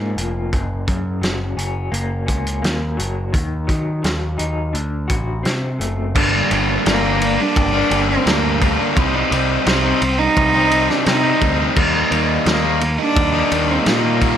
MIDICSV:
0, 0, Header, 1, 9, 480
1, 0, Start_track
1, 0, Tempo, 701754
1, 363, Time_signature, 4, 2, 24, 8
1, 9832, End_track
2, 0, Start_track
2, 0, Title_t, "Cello"
2, 0, Program_c, 0, 42
2, 4704, Note_on_c, 0, 58, 102
2, 5067, Note_on_c, 0, 62, 114
2, 5077, Note_off_c, 0, 58, 0
2, 5537, Note_off_c, 0, 62, 0
2, 5547, Note_on_c, 0, 60, 94
2, 5661, Note_on_c, 0, 58, 87
2, 5671, Note_off_c, 0, 60, 0
2, 6014, Note_off_c, 0, 58, 0
2, 6619, Note_on_c, 0, 60, 103
2, 6969, Note_on_c, 0, 63, 122
2, 6979, Note_off_c, 0, 60, 0
2, 7454, Note_on_c, 0, 62, 98
2, 7464, Note_off_c, 0, 63, 0
2, 7576, Note_on_c, 0, 63, 96
2, 7586, Note_off_c, 0, 62, 0
2, 7930, Note_off_c, 0, 63, 0
2, 8547, Note_on_c, 0, 58, 91
2, 8871, Note_off_c, 0, 58, 0
2, 8903, Note_on_c, 0, 62, 115
2, 9377, Note_on_c, 0, 60, 86
2, 9387, Note_off_c, 0, 62, 0
2, 9446, Note_on_c, 0, 57, 60
2, 9456, Note_off_c, 0, 60, 0
2, 9489, Note_on_c, 0, 58, 88
2, 9499, Note_off_c, 0, 57, 0
2, 9832, Note_off_c, 0, 58, 0
2, 9832, End_track
3, 0, Start_track
3, 0, Title_t, "Distorted electric guitar"
3, 0, Program_c, 1, 30
3, 4209, Note_on_c, 1, 43, 95
3, 4213, Note_on_c, 1, 50, 104
3, 4217, Note_on_c, 1, 55, 104
3, 4222, Note_on_c, 1, 58, 106
3, 4224, Note_on_c, 1, 62, 110
3, 4442, Note_off_c, 1, 50, 0
3, 4450, Note_on_c, 1, 50, 85
3, 4454, Note_off_c, 1, 55, 0
3, 4454, Note_off_c, 1, 58, 0
3, 4457, Note_on_c, 1, 55, 86
3, 4458, Note_off_c, 1, 62, 0
3, 4462, Note_on_c, 1, 58, 81
3, 4467, Note_on_c, 1, 62, 89
3, 4684, Note_off_c, 1, 43, 0
3, 4689, Note_off_c, 1, 50, 0
3, 4692, Note_on_c, 1, 43, 95
3, 4695, Note_off_c, 1, 58, 0
3, 4697, Note_on_c, 1, 50, 96
3, 4699, Note_off_c, 1, 55, 0
3, 4701, Note_off_c, 1, 62, 0
3, 4702, Note_on_c, 1, 55, 96
3, 4703, Note_on_c, 1, 58, 97
3, 4709, Note_on_c, 1, 62, 109
3, 4803, Note_off_c, 1, 62, 0
3, 4811, Note_on_c, 1, 62, 71
3, 4813, Note_off_c, 1, 58, 0
3, 4822, Note_on_c, 1, 58, 68
3, 4829, Note_off_c, 1, 55, 0
3, 4832, Note_on_c, 1, 55, 64
3, 4934, Note_off_c, 1, 50, 0
3, 4937, Note_off_c, 1, 58, 0
3, 4939, Note_off_c, 1, 62, 0
3, 4940, Note_off_c, 1, 55, 0
3, 5050, Note_off_c, 1, 43, 0
3, 5292, Note_on_c, 1, 62, 70
3, 5305, Note_on_c, 1, 58, 63
3, 5311, Note_on_c, 1, 55, 62
3, 5415, Note_on_c, 1, 50, 82
3, 5418, Note_off_c, 1, 55, 0
3, 5419, Note_off_c, 1, 58, 0
3, 5420, Note_on_c, 1, 55, 73
3, 5421, Note_off_c, 1, 62, 0
3, 5427, Note_on_c, 1, 58, 78
3, 5429, Note_on_c, 1, 62, 87
3, 5523, Note_off_c, 1, 62, 0
3, 5531, Note_off_c, 1, 58, 0
3, 5531, Note_on_c, 1, 62, 74
3, 5539, Note_on_c, 1, 58, 74
3, 5546, Note_off_c, 1, 55, 0
3, 5549, Note_on_c, 1, 55, 67
3, 5643, Note_off_c, 1, 50, 0
3, 5646, Note_on_c, 1, 43, 95
3, 5651, Note_on_c, 1, 50, 104
3, 5653, Note_off_c, 1, 55, 0
3, 5653, Note_off_c, 1, 58, 0
3, 5656, Note_on_c, 1, 55, 114
3, 5659, Note_off_c, 1, 62, 0
3, 5661, Note_on_c, 1, 58, 107
3, 5667, Note_on_c, 1, 62, 102
3, 5765, Note_off_c, 1, 62, 0
3, 5773, Note_on_c, 1, 62, 74
3, 5778, Note_off_c, 1, 58, 0
3, 5786, Note_on_c, 1, 58, 70
3, 5790, Note_off_c, 1, 55, 0
3, 5792, Note_on_c, 1, 55, 63
3, 5885, Note_off_c, 1, 50, 0
3, 5894, Note_on_c, 1, 50, 85
3, 5899, Note_off_c, 1, 55, 0
3, 5901, Note_off_c, 1, 58, 0
3, 5901, Note_on_c, 1, 55, 83
3, 5906, Note_off_c, 1, 62, 0
3, 5909, Note_on_c, 1, 58, 88
3, 5914, Note_on_c, 1, 62, 86
3, 6001, Note_off_c, 1, 62, 0
3, 6007, Note_off_c, 1, 43, 0
3, 6010, Note_on_c, 1, 62, 75
3, 6013, Note_off_c, 1, 58, 0
3, 6022, Note_on_c, 1, 58, 73
3, 6027, Note_off_c, 1, 55, 0
3, 6030, Note_on_c, 1, 55, 67
3, 6114, Note_off_c, 1, 62, 0
3, 6116, Note_off_c, 1, 50, 0
3, 6120, Note_off_c, 1, 58, 0
3, 6136, Note_on_c, 1, 48, 108
3, 6140, Note_off_c, 1, 55, 0
3, 6143, Note_on_c, 1, 55, 102
3, 6150, Note_on_c, 1, 60, 108
3, 6154, Note_on_c, 1, 63, 114
3, 6364, Note_off_c, 1, 48, 0
3, 6373, Note_on_c, 1, 48, 78
3, 6376, Note_off_c, 1, 60, 0
3, 6379, Note_off_c, 1, 55, 0
3, 6382, Note_on_c, 1, 55, 84
3, 6384, Note_on_c, 1, 60, 79
3, 6388, Note_off_c, 1, 63, 0
3, 6391, Note_on_c, 1, 63, 89
3, 6604, Note_off_c, 1, 48, 0
3, 6612, Note_on_c, 1, 48, 96
3, 6615, Note_off_c, 1, 55, 0
3, 6617, Note_off_c, 1, 60, 0
3, 6618, Note_on_c, 1, 55, 105
3, 6625, Note_on_c, 1, 60, 94
3, 6627, Note_off_c, 1, 63, 0
3, 6629, Note_on_c, 1, 63, 110
3, 6727, Note_off_c, 1, 63, 0
3, 6730, Note_off_c, 1, 60, 0
3, 6730, Note_on_c, 1, 63, 76
3, 6738, Note_on_c, 1, 60, 67
3, 6743, Note_off_c, 1, 55, 0
3, 6746, Note_on_c, 1, 55, 61
3, 6843, Note_off_c, 1, 48, 0
3, 6845, Note_off_c, 1, 60, 0
3, 6852, Note_off_c, 1, 55, 0
3, 6853, Note_off_c, 1, 63, 0
3, 7212, Note_on_c, 1, 63, 75
3, 7221, Note_on_c, 1, 60, 61
3, 7230, Note_on_c, 1, 55, 55
3, 7326, Note_on_c, 1, 48, 69
3, 7332, Note_off_c, 1, 60, 0
3, 7333, Note_off_c, 1, 55, 0
3, 7335, Note_off_c, 1, 63, 0
3, 7335, Note_on_c, 1, 55, 85
3, 7340, Note_on_c, 1, 60, 89
3, 7343, Note_on_c, 1, 63, 90
3, 7440, Note_off_c, 1, 63, 0
3, 7448, Note_on_c, 1, 63, 85
3, 7449, Note_off_c, 1, 60, 0
3, 7457, Note_on_c, 1, 60, 74
3, 7463, Note_off_c, 1, 55, 0
3, 7466, Note_on_c, 1, 55, 60
3, 7562, Note_off_c, 1, 48, 0
3, 7570, Note_on_c, 1, 48, 103
3, 7573, Note_off_c, 1, 55, 0
3, 7573, Note_off_c, 1, 60, 0
3, 7576, Note_off_c, 1, 63, 0
3, 7576, Note_on_c, 1, 55, 98
3, 7581, Note_on_c, 1, 60, 104
3, 7584, Note_on_c, 1, 63, 116
3, 7679, Note_off_c, 1, 63, 0
3, 7687, Note_on_c, 1, 63, 80
3, 7691, Note_off_c, 1, 60, 0
3, 7700, Note_on_c, 1, 60, 81
3, 7703, Note_off_c, 1, 55, 0
3, 7706, Note_on_c, 1, 55, 66
3, 7800, Note_off_c, 1, 48, 0
3, 7808, Note_on_c, 1, 48, 83
3, 7811, Note_off_c, 1, 55, 0
3, 7813, Note_off_c, 1, 60, 0
3, 7814, Note_on_c, 1, 55, 82
3, 7816, Note_off_c, 1, 63, 0
3, 7821, Note_on_c, 1, 60, 89
3, 7825, Note_on_c, 1, 63, 87
3, 7914, Note_off_c, 1, 63, 0
3, 7922, Note_on_c, 1, 63, 79
3, 7926, Note_off_c, 1, 60, 0
3, 7934, Note_on_c, 1, 60, 71
3, 7940, Note_off_c, 1, 55, 0
3, 7942, Note_on_c, 1, 55, 65
3, 8029, Note_off_c, 1, 63, 0
3, 8032, Note_off_c, 1, 48, 0
3, 8035, Note_off_c, 1, 60, 0
3, 8045, Note_on_c, 1, 51, 100
3, 8051, Note_off_c, 1, 55, 0
3, 8054, Note_on_c, 1, 55, 106
3, 8058, Note_on_c, 1, 58, 106
3, 8063, Note_on_c, 1, 63, 114
3, 8275, Note_off_c, 1, 51, 0
3, 8283, Note_on_c, 1, 51, 75
3, 8289, Note_off_c, 1, 55, 0
3, 8291, Note_on_c, 1, 55, 81
3, 8294, Note_off_c, 1, 58, 0
3, 8294, Note_off_c, 1, 63, 0
3, 8297, Note_on_c, 1, 58, 94
3, 8303, Note_on_c, 1, 63, 86
3, 8509, Note_off_c, 1, 51, 0
3, 8517, Note_on_c, 1, 51, 91
3, 8524, Note_off_c, 1, 55, 0
3, 8527, Note_off_c, 1, 63, 0
3, 8527, Note_on_c, 1, 55, 101
3, 8528, Note_off_c, 1, 58, 0
3, 8531, Note_on_c, 1, 58, 105
3, 8535, Note_on_c, 1, 63, 95
3, 8631, Note_off_c, 1, 63, 0
3, 8640, Note_on_c, 1, 63, 77
3, 8647, Note_off_c, 1, 58, 0
3, 8650, Note_on_c, 1, 58, 77
3, 8653, Note_off_c, 1, 55, 0
3, 8655, Note_on_c, 1, 55, 61
3, 8753, Note_off_c, 1, 51, 0
3, 8760, Note_off_c, 1, 55, 0
3, 8760, Note_off_c, 1, 63, 0
3, 8764, Note_off_c, 1, 58, 0
3, 9116, Note_on_c, 1, 63, 70
3, 9128, Note_on_c, 1, 58, 64
3, 9136, Note_on_c, 1, 55, 63
3, 9239, Note_on_c, 1, 51, 71
3, 9243, Note_off_c, 1, 55, 0
3, 9245, Note_on_c, 1, 55, 84
3, 9247, Note_off_c, 1, 58, 0
3, 9249, Note_off_c, 1, 63, 0
3, 9250, Note_on_c, 1, 58, 88
3, 9257, Note_on_c, 1, 63, 94
3, 9354, Note_off_c, 1, 63, 0
3, 9362, Note_on_c, 1, 63, 79
3, 9370, Note_off_c, 1, 58, 0
3, 9372, Note_on_c, 1, 58, 72
3, 9375, Note_off_c, 1, 55, 0
3, 9377, Note_on_c, 1, 55, 62
3, 9472, Note_off_c, 1, 51, 0
3, 9480, Note_on_c, 1, 51, 98
3, 9486, Note_off_c, 1, 55, 0
3, 9488, Note_on_c, 1, 55, 103
3, 9489, Note_off_c, 1, 58, 0
3, 9489, Note_off_c, 1, 63, 0
3, 9492, Note_on_c, 1, 58, 104
3, 9497, Note_on_c, 1, 63, 119
3, 9590, Note_off_c, 1, 63, 0
3, 9598, Note_on_c, 1, 63, 81
3, 9604, Note_off_c, 1, 58, 0
3, 9607, Note_on_c, 1, 58, 71
3, 9614, Note_off_c, 1, 55, 0
3, 9617, Note_on_c, 1, 55, 65
3, 9711, Note_off_c, 1, 51, 0
3, 9719, Note_on_c, 1, 51, 73
3, 9724, Note_off_c, 1, 55, 0
3, 9726, Note_on_c, 1, 55, 81
3, 9728, Note_off_c, 1, 63, 0
3, 9732, Note_off_c, 1, 58, 0
3, 9734, Note_on_c, 1, 58, 79
3, 9737, Note_on_c, 1, 63, 83
3, 9832, Note_off_c, 1, 51, 0
3, 9832, Note_off_c, 1, 55, 0
3, 9832, Note_off_c, 1, 58, 0
3, 9832, Note_off_c, 1, 63, 0
3, 9832, End_track
4, 0, Start_track
4, 0, Title_t, "Overdriven electric guitar"
4, 0, Program_c, 2, 29
4, 4328, Note_on_c, 2, 62, 71
4, 4337, Note_on_c, 2, 58, 68
4, 4344, Note_on_c, 2, 55, 64
4, 4453, Note_off_c, 2, 55, 0
4, 4453, Note_off_c, 2, 58, 0
4, 4456, Note_off_c, 2, 62, 0
4, 5045, Note_on_c, 2, 62, 75
4, 5052, Note_on_c, 2, 58, 66
4, 5060, Note_on_c, 2, 55, 58
4, 5281, Note_off_c, 2, 62, 0
4, 5289, Note_off_c, 2, 58, 0
4, 5298, Note_off_c, 2, 55, 0
4, 6249, Note_on_c, 2, 63, 66
4, 6258, Note_on_c, 2, 60, 76
4, 6263, Note_on_c, 2, 55, 59
4, 6368, Note_off_c, 2, 60, 0
4, 6369, Note_off_c, 2, 55, 0
4, 6379, Note_off_c, 2, 63, 0
4, 6968, Note_on_c, 2, 63, 75
4, 6976, Note_on_c, 2, 60, 64
4, 6981, Note_on_c, 2, 55, 67
4, 7200, Note_off_c, 2, 63, 0
4, 7206, Note_off_c, 2, 60, 0
4, 7219, Note_off_c, 2, 55, 0
4, 8164, Note_on_c, 2, 63, 70
4, 8174, Note_on_c, 2, 58, 63
4, 8182, Note_on_c, 2, 55, 59
4, 8286, Note_off_c, 2, 55, 0
4, 8291, Note_off_c, 2, 58, 0
4, 8291, Note_off_c, 2, 63, 0
4, 8882, Note_on_c, 2, 63, 86
4, 8889, Note_on_c, 2, 58, 69
4, 8895, Note_on_c, 2, 55, 65
4, 9118, Note_off_c, 2, 63, 0
4, 9130, Note_off_c, 2, 58, 0
4, 9138, Note_off_c, 2, 55, 0
4, 9832, End_track
5, 0, Start_track
5, 0, Title_t, "Clean electric guitar"
5, 0, Program_c, 3, 27
5, 0, Note_on_c, 3, 53, 66
5, 0, Note_on_c, 3, 58, 70
5, 0, Note_on_c, 3, 61, 63
5, 111, Note_off_c, 3, 53, 0
5, 119, Note_on_c, 3, 53, 65
5, 358, Note_on_c, 3, 42, 65
5, 361, Note_off_c, 3, 53, 0
5, 363, Note_off_c, 3, 61, 0
5, 595, Note_on_c, 3, 49, 66
5, 831, Note_on_c, 3, 54, 64
5, 1074, Note_on_c, 3, 61, 63
5, 1309, Note_off_c, 3, 58, 0
5, 1311, Note_on_c, 3, 58, 70
5, 1539, Note_off_c, 3, 61, 0
5, 1547, Note_on_c, 3, 61, 62
5, 1563, Note_off_c, 3, 42, 0
5, 1784, Note_off_c, 3, 58, 0
5, 1793, Note_on_c, 3, 58, 66
5, 1802, Note_off_c, 3, 49, 0
5, 2024, Note_off_c, 3, 54, 0
5, 2032, Note_on_c, 3, 54, 72
5, 2275, Note_on_c, 3, 51, 69
5, 2278, Note_off_c, 3, 61, 0
5, 2280, Note_off_c, 3, 54, 0
5, 2280, Note_off_c, 3, 58, 0
5, 2512, Note_on_c, 3, 54, 61
5, 2748, Note_off_c, 3, 54, 0
5, 2756, Note_on_c, 3, 54, 66
5, 2995, Note_on_c, 3, 63, 66
5, 3232, Note_off_c, 3, 51, 0
5, 3235, Note_on_c, 3, 50, 68
5, 3242, Note_off_c, 3, 63, 0
5, 3243, Note_off_c, 3, 54, 0
5, 3473, Note_on_c, 3, 66, 63
5, 3715, Note_on_c, 3, 60, 70
5, 3958, Note_on_c, 3, 57, 64
5, 4201, Note_off_c, 3, 66, 0
5, 4202, Note_off_c, 3, 50, 0
5, 4202, Note_off_c, 3, 60, 0
5, 4204, Note_off_c, 3, 57, 0
5, 9832, End_track
6, 0, Start_track
6, 0, Title_t, "Picked electric bass"
6, 0, Program_c, 4, 34
6, 0, Note_on_c, 4, 44, 72
6, 102, Note_off_c, 4, 44, 0
6, 114, Note_on_c, 4, 29, 82
6, 343, Note_off_c, 4, 29, 0
6, 362, Note_on_c, 4, 30, 89
6, 587, Note_off_c, 4, 30, 0
6, 602, Note_on_c, 4, 42, 82
6, 827, Note_off_c, 4, 42, 0
6, 832, Note_on_c, 4, 30, 76
6, 1062, Note_off_c, 4, 30, 0
6, 1072, Note_on_c, 4, 30, 69
6, 1303, Note_off_c, 4, 30, 0
6, 1312, Note_on_c, 4, 30, 90
6, 1543, Note_off_c, 4, 30, 0
6, 1563, Note_on_c, 4, 37, 78
6, 1789, Note_off_c, 4, 37, 0
6, 1798, Note_on_c, 4, 39, 77
6, 2027, Note_off_c, 4, 39, 0
6, 2045, Note_on_c, 4, 30, 80
6, 2271, Note_off_c, 4, 30, 0
6, 2283, Note_on_c, 4, 39, 82
6, 2510, Note_off_c, 4, 39, 0
6, 2521, Note_on_c, 4, 51, 80
6, 2749, Note_off_c, 4, 51, 0
6, 2764, Note_on_c, 4, 39, 81
6, 2991, Note_off_c, 4, 39, 0
6, 3005, Note_on_c, 4, 39, 69
6, 3231, Note_off_c, 4, 39, 0
6, 3245, Note_on_c, 4, 38, 87
6, 3471, Note_off_c, 4, 38, 0
6, 3488, Note_on_c, 4, 33, 81
6, 3713, Note_off_c, 4, 33, 0
6, 3732, Note_on_c, 4, 48, 70
6, 3955, Note_off_c, 4, 48, 0
6, 3967, Note_on_c, 4, 30, 76
6, 4210, Note_off_c, 4, 30, 0
6, 4210, Note_on_c, 4, 31, 101
6, 4384, Note_off_c, 4, 31, 0
6, 4456, Note_on_c, 4, 31, 95
6, 4628, Note_off_c, 4, 31, 0
6, 4696, Note_on_c, 4, 31, 92
6, 5041, Note_off_c, 4, 31, 0
6, 5174, Note_on_c, 4, 31, 99
6, 5346, Note_off_c, 4, 31, 0
6, 5411, Note_on_c, 4, 31, 90
6, 5584, Note_off_c, 4, 31, 0
6, 5651, Note_on_c, 4, 38, 90
6, 5998, Note_off_c, 4, 38, 0
6, 6136, Note_on_c, 4, 36, 99
6, 6307, Note_off_c, 4, 36, 0
6, 6370, Note_on_c, 4, 36, 102
6, 6543, Note_off_c, 4, 36, 0
6, 6611, Note_on_c, 4, 36, 96
6, 6783, Note_off_c, 4, 36, 0
6, 6853, Note_on_c, 4, 36, 81
6, 7024, Note_off_c, 4, 36, 0
6, 7093, Note_on_c, 4, 36, 101
6, 7439, Note_off_c, 4, 36, 0
6, 7568, Note_on_c, 4, 48, 90
6, 7741, Note_off_c, 4, 48, 0
6, 7810, Note_on_c, 4, 38, 89
6, 7983, Note_off_c, 4, 38, 0
6, 8048, Note_on_c, 4, 39, 105
6, 8221, Note_off_c, 4, 39, 0
6, 8286, Note_on_c, 4, 39, 96
6, 8460, Note_off_c, 4, 39, 0
6, 8523, Note_on_c, 4, 39, 100
6, 8872, Note_off_c, 4, 39, 0
6, 9002, Note_on_c, 4, 39, 95
6, 9177, Note_off_c, 4, 39, 0
6, 9246, Note_on_c, 4, 39, 97
6, 9419, Note_off_c, 4, 39, 0
6, 9482, Note_on_c, 4, 46, 85
6, 9831, Note_off_c, 4, 46, 0
6, 9832, End_track
7, 0, Start_track
7, 0, Title_t, "Muted distorted electric guitar strokes"
7, 4942, Note_on_c, 9, 29, 47
7, 5011, Note_off_c, 9, 29, 0
7, 6851, Note_on_c, 9, 29, 45
7, 6919, Note_off_c, 9, 29, 0
7, 8761, Note_on_c, 9, 29, 41
7, 8830, Note_off_c, 9, 29, 0
7, 9832, End_track
8, 0, Start_track
8, 0, Title_t, "Muted overdriven electric guitar strokes"
8, 4924, Note_on_c, 9, 29, 54
8, 4993, Note_off_c, 9, 29, 0
8, 6851, Note_on_c, 9, 29, 50
8, 6920, Note_off_c, 9, 29, 0
8, 8772, Note_on_c, 9, 29, 49
8, 8840, Note_off_c, 9, 29, 0
8, 9832, End_track
9, 0, Start_track
9, 0, Title_t, "Drums"
9, 122, Note_on_c, 9, 42, 55
9, 190, Note_off_c, 9, 42, 0
9, 362, Note_on_c, 9, 36, 95
9, 362, Note_on_c, 9, 42, 51
9, 430, Note_off_c, 9, 36, 0
9, 430, Note_off_c, 9, 42, 0
9, 599, Note_on_c, 9, 42, 54
9, 601, Note_on_c, 9, 36, 77
9, 668, Note_off_c, 9, 42, 0
9, 669, Note_off_c, 9, 36, 0
9, 841, Note_on_c, 9, 42, 55
9, 848, Note_on_c, 9, 38, 96
9, 910, Note_off_c, 9, 42, 0
9, 916, Note_off_c, 9, 38, 0
9, 1084, Note_on_c, 9, 42, 60
9, 1152, Note_off_c, 9, 42, 0
9, 1324, Note_on_c, 9, 42, 55
9, 1392, Note_off_c, 9, 42, 0
9, 1562, Note_on_c, 9, 36, 85
9, 1563, Note_on_c, 9, 42, 66
9, 1630, Note_off_c, 9, 36, 0
9, 1632, Note_off_c, 9, 42, 0
9, 1686, Note_on_c, 9, 42, 62
9, 1755, Note_off_c, 9, 42, 0
9, 1807, Note_on_c, 9, 42, 61
9, 1813, Note_on_c, 9, 38, 102
9, 1875, Note_off_c, 9, 42, 0
9, 1881, Note_off_c, 9, 38, 0
9, 2047, Note_on_c, 9, 42, 59
9, 2116, Note_off_c, 9, 42, 0
9, 2284, Note_on_c, 9, 36, 98
9, 2284, Note_on_c, 9, 42, 63
9, 2352, Note_off_c, 9, 36, 0
9, 2352, Note_off_c, 9, 42, 0
9, 2523, Note_on_c, 9, 36, 77
9, 2523, Note_on_c, 9, 42, 56
9, 2591, Note_off_c, 9, 42, 0
9, 2592, Note_off_c, 9, 36, 0
9, 2764, Note_on_c, 9, 42, 61
9, 2770, Note_on_c, 9, 38, 106
9, 2832, Note_off_c, 9, 42, 0
9, 2839, Note_off_c, 9, 38, 0
9, 3003, Note_on_c, 9, 42, 61
9, 3071, Note_off_c, 9, 42, 0
9, 3246, Note_on_c, 9, 42, 56
9, 3315, Note_off_c, 9, 42, 0
9, 3484, Note_on_c, 9, 42, 65
9, 3487, Note_on_c, 9, 36, 88
9, 3553, Note_off_c, 9, 42, 0
9, 3555, Note_off_c, 9, 36, 0
9, 3728, Note_on_c, 9, 42, 52
9, 3734, Note_on_c, 9, 38, 100
9, 3797, Note_off_c, 9, 42, 0
9, 3803, Note_off_c, 9, 38, 0
9, 3972, Note_on_c, 9, 42, 54
9, 4040, Note_off_c, 9, 42, 0
9, 4211, Note_on_c, 9, 36, 108
9, 4212, Note_on_c, 9, 49, 119
9, 4280, Note_off_c, 9, 36, 0
9, 4280, Note_off_c, 9, 49, 0
9, 4452, Note_on_c, 9, 51, 79
9, 4520, Note_off_c, 9, 51, 0
9, 4692, Note_on_c, 9, 51, 105
9, 4698, Note_on_c, 9, 38, 113
9, 4761, Note_off_c, 9, 51, 0
9, 4767, Note_off_c, 9, 38, 0
9, 4935, Note_on_c, 9, 51, 92
9, 5003, Note_off_c, 9, 51, 0
9, 5173, Note_on_c, 9, 36, 113
9, 5175, Note_on_c, 9, 51, 106
9, 5242, Note_off_c, 9, 36, 0
9, 5244, Note_off_c, 9, 51, 0
9, 5412, Note_on_c, 9, 51, 91
9, 5480, Note_off_c, 9, 51, 0
9, 5654, Note_on_c, 9, 51, 101
9, 5660, Note_on_c, 9, 38, 115
9, 5722, Note_off_c, 9, 51, 0
9, 5728, Note_off_c, 9, 38, 0
9, 5893, Note_on_c, 9, 36, 90
9, 5894, Note_on_c, 9, 51, 90
9, 5962, Note_off_c, 9, 36, 0
9, 5962, Note_off_c, 9, 51, 0
9, 6133, Note_on_c, 9, 36, 115
9, 6135, Note_on_c, 9, 51, 102
9, 6202, Note_off_c, 9, 36, 0
9, 6203, Note_off_c, 9, 51, 0
9, 6375, Note_on_c, 9, 51, 83
9, 6443, Note_off_c, 9, 51, 0
9, 6610, Note_on_c, 9, 51, 106
9, 6616, Note_on_c, 9, 38, 114
9, 6679, Note_off_c, 9, 51, 0
9, 6685, Note_off_c, 9, 38, 0
9, 6851, Note_on_c, 9, 51, 83
9, 6919, Note_off_c, 9, 51, 0
9, 7091, Note_on_c, 9, 36, 119
9, 7092, Note_on_c, 9, 51, 101
9, 7160, Note_off_c, 9, 36, 0
9, 7160, Note_off_c, 9, 51, 0
9, 7328, Note_on_c, 9, 51, 91
9, 7397, Note_off_c, 9, 51, 0
9, 7456, Note_on_c, 9, 38, 37
9, 7524, Note_off_c, 9, 38, 0
9, 7567, Note_on_c, 9, 51, 98
9, 7573, Note_on_c, 9, 38, 103
9, 7635, Note_off_c, 9, 51, 0
9, 7641, Note_off_c, 9, 38, 0
9, 7807, Note_on_c, 9, 51, 76
9, 7808, Note_on_c, 9, 36, 90
9, 7876, Note_off_c, 9, 51, 0
9, 7877, Note_off_c, 9, 36, 0
9, 8045, Note_on_c, 9, 49, 114
9, 8048, Note_on_c, 9, 36, 113
9, 8114, Note_off_c, 9, 49, 0
9, 8117, Note_off_c, 9, 36, 0
9, 8287, Note_on_c, 9, 51, 70
9, 8356, Note_off_c, 9, 51, 0
9, 8524, Note_on_c, 9, 51, 95
9, 8530, Note_on_c, 9, 38, 120
9, 8592, Note_off_c, 9, 51, 0
9, 8598, Note_off_c, 9, 38, 0
9, 8764, Note_on_c, 9, 51, 81
9, 8832, Note_off_c, 9, 51, 0
9, 9002, Note_on_c, 9, 51, 104
9, 9005, Note_on_c, 9, 36, 115
9, 9071, Note_off_c, 9, 51, 0
9, 9073, Note_off_c, 9, 36, 0
9, 9245, Note_on_c, 9, 51, 85
9, 9313, Note_off_c, 9, 51, 0
9, 9481, Note_on_c, 9, 51, 112
9, 9487, Note_on_c, 9, 38, 113
9, 9550, Note_off_c, 9, 51, 0
9, 9556, Note_off_c, 9, 38, 0
9, 9721, Note_on_c, 9, 51, 87
9, 9723, Note_on_c, 9, 36, 86
9, 9790, Note_off_c, 9, 51, 0
9, 9792, Note_off_c, 9, 36, 0
9, 9832, End_track
0, 0, End_of_file